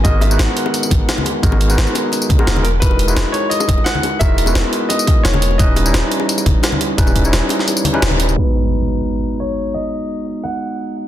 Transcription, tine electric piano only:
\new Staff \with { instrumentName = "Tine electric piano" } { \time 4/4 \key gis \minor \tempo 4 = 173 <gis b dis' fis' ais'>8. <gis b dis' fis' b'>2.~ <gis b dis' fis' b'>16 | <gis b dis' fis' ais'>8. <gis b dis' fis' b'>2 <gis b dis' fis' ais'>8. r8 | <gis dis' e' fis' ais'>8. <gis dis' e' fis' b'>2.~ <gis dis' e' fis' b'>16 | <gis dis' e' fis' ais'>8. <gis b e' fis' b'>2.~ <gis b e' fis' b'>16 |
<g cis' dis' e' b'>8. <g cis' dis' e' cis''>2.~ <g cis' dis' e' cis''>16 | <g cis' dis' e' b'>8. <g cis' dis' e' cis''>2 <g cis' dis' e' b'>4~ <g cis' dis' e' b'>16 | <gis b dis' fis'>1~ | <gis b dis' fis'>1 | }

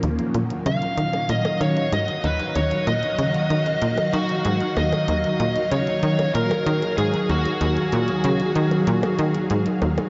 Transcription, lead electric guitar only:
\new Staff \with { instrumentName = "Lead electric guitar" } { \time 4/4 \key ees \minor \tempo 4 = 95 r4 f''4 ees''8 des''8 ees''8 ces''8 | des''8 ees''2 ges'4 ees''8~ | ees''4 des''4 bes'4 aes'8 ges'8~ | ges'2. r4 | }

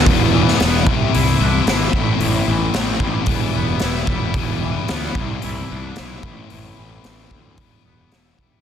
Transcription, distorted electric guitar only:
\new Staff \with { instrumentName = "Distorted electric guitar" } { \time 4/4 \key e \minor \tempo 4 = 112 <e g b e'>8 <g b e'>8 <e g b e'>8 <c e g c' e'>8 <e g c' e'>8 <g c' e'>8 <c e g c' e'>8 <a, e a c' e'>8 | <a, e a c' e'>8 <a c' e'>8 <e a c' e'>8 <a, e a c' e'>8 <e g b e'>8 <g b e'>8 <e g b e'>8 <g b e'>8 | <e g b e'>8 <g b e'>8 <e g b e'>8 <c e g c' e'>8 <e g c' e'>8 <g c' e'>8 <c e g c' e'>8 <a, e a c' e'>8 | <a, e a c' e'>8 <a c' e'>8 <e a c' e'>8 <a, e a c' e'>8 <e g b e'>8 <g b e'>8 <e g b e'>8 <g b e'>8 | }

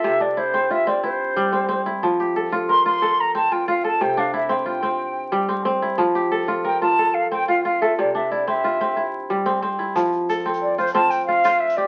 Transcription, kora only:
\new Staff \with { instrumentName = "Kora" } { \time 12/8 \key f \major \tempo 4. = 121 << { a'8 d'8 e'4 f'4 e'4. c'4 e'8~ | e'8 g'8 a'4 bes'4 a'4. f'4 a'8~ | a'8 d'8 e'4 f'4. r4 c'4 e'8~ | e'8 g'8 a'4 bes'4 a'4. f'4 a'8~ |
a'8 d'8 e'4 f'4 e'4. c'4 e'8~ | e'8 r8 a'4. f'8 f'4 f'8 c''4 g'8 | } \\ { c4 r8 c'4 c'4 r8 g4 c'4 | f4 r8 f'4 f'4 r8 c'4 f'4 | c4 r8 c'4 c'4 r8 g4 c'4 | f4 r8 f'4 f'4 r8 c'4 f'4 |
c4 r8 c'4 c'4 r8 g4 c'4 | f4 r8 c'4 r8 c'4 r8 f'4 r8 | } >> }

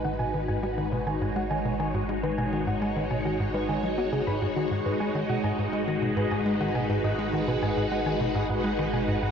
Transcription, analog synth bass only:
\new Staff \with { instrumentName = "Analog synth bass" } { \clef bass \time 4/4 \key gis \minor \tempo 4 = 103 dis16 b,16 dis16 gis,16 gis16 dis16 b,16 dis16 gis,16 gis16 dis16 b,16 dis16 gis,16 gis16 dis16 | b,16 dis16 gis,16 gis16 dis16 b,16 dis16 gis,16 gis16 dis16 fis16 b16 cis16 gis,16 gis,16 dis16 | gis,16 gis,16 gis16 dis16 b,16 gis,16 gis,16 gis16 dis16 b,16 gis,16 gis,16 gis16 dis16 b,16 gis,16 | gis,16 gis16 dis16 b,16 gis,16 gis,16 gis16 dis16 b,16 gis,16 gis,16 gis16 dis16 b,16 gis,16 gis,16 | }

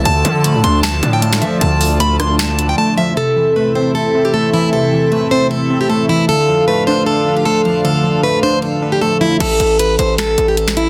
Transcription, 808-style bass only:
\new Staff \with { instrumentName = "808-style bass" } { \clef bass \time 4/4 \key d \dorian \tempo 4 = 154 d,8 d8. a,16 d,4 a,4 f8 | d,2. r4 | r1 | r1 |
r1 | r1 | a,,8 a,,4 a,,4 a,,4. | }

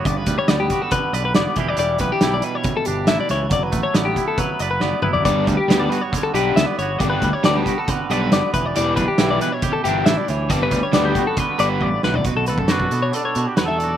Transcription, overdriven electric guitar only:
\new Staff \with { instrumentName = "Overdriven electric guitar" } { \time 4/4 \key g \lydian \tempo 4 = 138 r1 | r1 | r1 | <g b d' g'>8 r8 <g b d' g'>8 r4 <g b d' g'>8 r4 |
<g b d' g'>8 r8 <g b d' g'>8 r4 <g b d' g'>8 r4 | <e b e' g'>8 r8 <e b e' g'>8 r4 <e b e' g'>8 r4 | <g b d' g'>8 r8 <g b d' g'>8 r4 <g b d' g'>8 r4 | r1 | }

